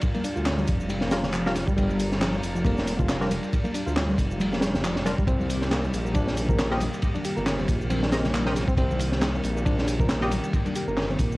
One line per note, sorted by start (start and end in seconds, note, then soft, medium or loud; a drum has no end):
0.00 11.37 G3 medium
0.00 5.23 D4 medium
0.00 5.23 F4 medium
0.00 5.23 A#4 medium
0.00 kick loud
0.00 ride medium
0.00 shaker soft
0.14 0.23 A#3 medium
0.14 ride soft
0.14 high conga medium
0.14 shaker soft
0.24 0.34 D4 medium
0.24 open hi-hat medium
0.24 ride medium
0.24 shaker medium
0.36 0.65 D2 medium
0.36 0.57 F4 medium
0.36 shaker soft
0.46 snare loud
0.46 clap loud
0.46 ride medium
0.46 shaker soft
0.58 0.67 G3 medium
0.58 high conga medium
0.58 shaker soft
0.68 1.64 F1 loud
0.68 kick loud
0.68 open hi-hat medium
0.68 ride medium
0.68 shaker medium
0.80 shaker soft
0.89 1.01 G3 medium
0.89 ride medium
0.89 high conga loud
0.89 shaker soft
1.01 1.11 A#3 medium
1.01 snare soft
1.01 shaker soft
1.11 1.22 G3 medium
1.11 1.26 G3 medium
1.11 1.26 D4 medium
1.11 1.26 F4 medium
1.11 1.26 A#4 medium
1.11 snare loud
1.11 open hi-hat medium
1.11 ride medium
1.11 shaker medium
1.23 snare medium
1.23 high conga medium
1.23 low conga medium
1.23 shaker soft
1.33 1.45 F3 medium
1.33 clap loud
1.33 ride medium
1.33 shaker soft
1.46 1.53 G3 loud
1.46 1.53 D4 medium
1.46 1.53 F4 medium
1.46 1.53 A#4 loud
1.46 snare soft
1.46 shaker soft
1.55 snare soft
1.55 open hi-hat medium
1.55 ride medium
1.55 high conga medium
1.55 shaker medium
1.67 1.72 G3 loud
1.67 kick loud
1.67 shaker soft
1.77 2.40 G1 loud
1.77 2.20 G3 loud
1.77 kick loud
1.77 ride medium
1.77 shaker soft
1.89 high conga loud
1.89 shaker soft
2.00 open hi-hat medium
2.00 ride medium
2.00 shaker medium
2.12 snare soft
2.12 shaker soft
2.20 2.32 F3 medium
2.20 snare loud
2.20 clap loud
2.20 ride loud
2.20 shaker soft
2.34 high conga medium
2.34 shaker soft
2.43 3.39 F1 loud
2.43 open hi-hat medium
2.43 ride medium
2.43 shaker medium
2.55 2.64 F3 medium
2.55 shaker soft
2.65 2.98 A#3 loud
2.65 kick loud
2.65 ride medium
2.65 high conga loud
2.65 shaker soft
2.78 snare medium
2.78 shaker soft
2.87 open hi-hat medium
2.87 ride medium
2.87 shaker medium
2.99 3.20 F4 medium
2.99 kick loud
2.99 high conga medium
2.99 low conga medium
2.99 shaker soft
3.09 snare loud
3.09 clap loud
3.09 ride medium
3.09 shaker soft
3.21 3.29 F3 medium
3.21 3.33 G3 loud
3.21 3.33 D4 medium
3.21 3.33 F4 medium
3.21 3.33 A#4 loud
3.21 snare soft
3.21 shaker soft
3.30 open hi-hat medium
3.30 ride medium
3.30 high conga medium
3.30 shaker medium
3.43 ride soft
3.43 shaker soft
3.53 kick loud
3.53 ride medium
3.53 shaker soft
3.64 3.73 A#3 medium
3.64 ride soft
3.64 high conga medium
3.64 shaker soft
3.74 3.84 D4 medium
3.74 open hi-hat medium
3.74 ride medium
3.74 shaker medium
3.86 4.15 D2 medium
3.86 4.07 F4 medium
3.86 shaker soft
3.96 snare loud
3.96 clap loud
3.96 ride medium
3.96 shaker soft
4.09 4.18 G3 medium
4.09 high conga medium
4.09 shaker soft
4.18 5.14 F1 loud
4.18 kick loud
4.18 open hi-hat medium
4.18 ride medium
4.18 shaker medium
4.31 shaker soft
4.40 4.51 G3 medium
4.40 ride medium
4.40 high conga loud
4.40 shaker soft
4.52 4.61 A#3 medium
4.52 snare soft
4.52 shaker soft
4.61 4.72 G3 medium
4.61 snare loud
4.61 open hi-hat medium
4.61 ride medium
4.61 shaker medium
4.74 snare medium
4.74 high conga medium
4.74 low conga medium
4.74 shaker soft
4.84 4.96 F3 medium
4.84 clap loud
4.84 ride medium
4.84 shaker soft
4.96 snare soft
4.96 shaker soft
5.05 5.15 G3 medium
5.05 5.15 D4 medium
5.05 5.15 F4 medium
5.05 5.15 A#4 loud
5.05 snare soft
5.05 open hi-hat medium
5.05 ride medium
5.05 high conga medium
5.05 shaker medium
5.18 5.23 G3 loud
5.18 kick loud
5.18 shaker soft
5.27 5.90 C2 loud
5.27 11.37 C3 medium
5.27 11.37 D#3 medium
5.27 11.37 A#3 medium
5.27 5.70 C4 loud
5.27 kick loud
5.27 ride medium
5.27 shaker soft
5.40 high conga medium
5.40 shaker soft
5.50 open hi-hat medium
5.50 ride medium
5.50 shaker medium
5.62 snare soft
5.62 shaker soft
5.71 5.83 A#3 medium
5.71 snare loud
5.71 clap loud
5.71 ride loud
5.71 shaker soft
5.84 high conga medium
5.84 shaker soft
5.93 6.89 A#1 loud
5.93 open hi-hat medium
5.93 ride medium
5.93 shaker medium
6.05 6.14 A#3 medium
6.05 shaker soft
6.14 6.48 D4 loud
6.14 kick loud
6.14 ride medium
6.14 high conga loud
6.14 shaker soft
6.28 snare medium
6.28 shaker soft
6.37 open hi-hat medium
6.37 ride medium
6.37 shaker medium
6.49 6.70 A#4 medium
6.49 kick loud
6.49 high conga medium
6.49 low conga medium
6.49 shaker soft
6.59 snare loud
6.59 clap loud
6.59 ride loud
6.59 shaker soft
6.71 6.79 A#3 medium
6.71 6.83 C4 loud
6.71 6.83 G4 medium
6.71 6.83 A#4 medium
6.71 6.83 D#5 loud
6.71 snare soft
6.71 shaker soft
6.80 open hi-hat medium
6.80 ride medium
6.80 high conga medium
6.80 shaker medium
6.93 ride soft
6.93 shaker soft
7.02 kick loud
7.02 ride medium
7.02 shaker soft
7.15 7.24 D4 medium
7.15 ride soft
7.15 high conga medium
7.15 shaker soft
7.24 7.35 G4 medium
7.24 open hi-hat medium
7.24 ride medium
7.24 shaker medium
7.36 7.65 G1 loud
7.36 7.57 A#4 medium
7.36 shaker soft
7.46 snare loud
7.46 clap loud
7.46 ride medium
7.46 shaker soft
7.58 7.68 C4 medium
7.58 high conga medium
7.58 shaker soft
7.68 8.64 A#1 loud
7.68 kick medium
7.68 open hi-hat medium
7.68 ride medium
7.68 shaker medium
7.81 shaker soft
7.90 8.01 C4 medium
7.90 ride medium
7.90 high conga medium
7.90 shaker soft
8.02 8.11 D4 medium
8.02 snare medium
8.02 shaker soft
8.12 8.22 C4 medium
8.12 8.26 C4 medium
8.12 8.26 G4 medium
8.12 8.26 A#4 medium
8.12 8.26 D#5 medium
8.12 snare loud
8.12 open hi-hat medium
8.12 ride medium
8.12 shaker medium
8.24 snare medium
8.24 high conga medium
8.24 low conga medium
8.24 shaker soft
8.34 8.46 A#3 medium
8.34 clap loud
8.34 ride medium
8.34 shaker soft
8.46 8.54 C4 loud
8.46 8.54 G4 loud
8.46 8.54 A#4 medium
8.46 8.54 D#5 loud
8.46 snare soft
8.46 shaker soft
8.56 snare soft
8.56 open hi-hat medium
8.56 ride medium
8.56 high conga medium
8.56 shaker medium
8.68 8.73 C4 loud
8.68 kick loud
8.68 shaker soft
8.77 9.40 C2 loud
8.77 9.21 C4 loud
8.77 kick loud
8.77 ride medium
8.77 shaker soft
8.91 high conga medium
8.91 shaker soft
8.99 open hi-hat medium
8.99 ride medium
8.99 shaker medium
9.12 snare soft
9.12 shaker soft
9.21 9.33 A#3 medium
9.21 snare loud
9.21 clap loud
9.21 ride medium
9.21 shaker soft
9.34 high conga medium
9.34 shaker soft
9.43 10.40 A#1 loud
9.43 open hi-hat medium
9.43 ride medium
9.43 shaker medium
9.56 9.65 A#3 medium
9.56 shaker soft
9.65 9.98 D4 loud
9.65 kick loud
9.65 ride medium
9.65 high conga medium
9.65 shaker soft
9.79 snare medium
9.79 shaker soft
9.88 open hi-hat medium
9.88 ride medium
9.88 shaker medium
10.00 10.21 A#4 medium
10.00 kick loud
10.00 high conga medium
10.00 low conga medium
10.00 shaker soft
10.09 snare loud
10.09 clap loud
10.09 ride medium
10.09 shaker soft
10.21 10.30 A#3 medium
10.21 10.34 C4 loud
10.21 10.34 G4 medium
10.21 10.34 A#4 medium
10.21 10.34 D#5 loud
10.21 snare soft
10.21 shaker soft
10.31 open hi-hat medium
10.31 ride medium
10.31 high conga medium
10.31 shaker medium
10.43 ride soft
10.43 shaker soft
10.53 kick loud
10.53 ride medium
10.53 shaker soft
10.66 10.74 D4 medium
10.66 ride soft
10.66 high conga medium
10.66 shaker soft
10.75 10.85 G4 medium
10.75 open hi-hat medium
10.75 ride medium
10.75 shaker medium
10.87 11.16 G1 medium
10.87 11.08 A#4 medium
10.87 shaker soft
10.97 snare loud
10.97 clap loud
10.97 ride medium
10.97 shaker soft
11.09 11.19 C4 medium
11.09 high conga medium
11.09 shaker soft
11.18 11.37 A#1 loud
11.18 kick medium
11.18 open hi-hat medium
11.18 ride medium
11.18 shaker medium
11.32 shaker soft